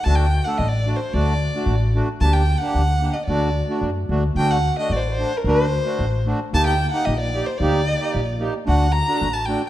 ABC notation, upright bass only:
X:1
M:2/4
L:1/8
Q:1/4=111
K:none
V:1 name="Upright bass" clef=bass
D,,2 A,,,2 | D,,2 A,,,2 | D,,2 D,,2 | D,,2 ^F,, D,, |
D,,2 A,,,2 | D,,2 A,,,2 | D,,2 _B,,,2 | D,,2 _B,,,2 |
D,,2 A,,,2 |]